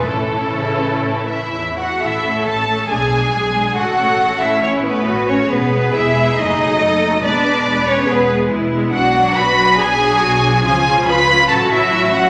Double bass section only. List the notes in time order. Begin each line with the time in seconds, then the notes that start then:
0.05 A1
2.02 A1
2.46 A1
2.89 B1
3.33 B1
3.76 A1
4.19 A1
4.63 A1
5.07 A1
5.50 E1
5.94 E1
6.37 F#1
6.80 F#1
7.23 E1
7.66 E1
8.08 E1
8.51 E1
8.94 B1
9.37 B1
9.79 B1
10.22 B1
10.65 C#2
11.08 C#2
11.50 A1
11.93 A1